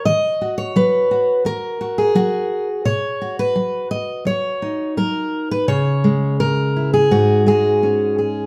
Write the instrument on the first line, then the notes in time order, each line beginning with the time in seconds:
steel-string acoustic guitar
Already playing: F#4
0.05 D#3 D#5
0.41 F#4
0.58 C#5
0.76 F#3 B4
1.11 F#4
1.45 D#3 A#4
1.81 F#4
1.98 G#4
2.15 F#3 F#4
2.85 B2 C#5
3.22 F#4
3.39 B4
3.56 F#3
3.91 D#5
4.25 F#3 C#5
4.62 D#4
4.97 F#3 A#4
5.51 B4
5.68 C#3 C#5
6.04 G#3
6.40 A#4
6.76 E4
6.94 G#4
7.11 G#2 F#4
7.46 G#3 G#4
7.83 C#4
8.19 G#4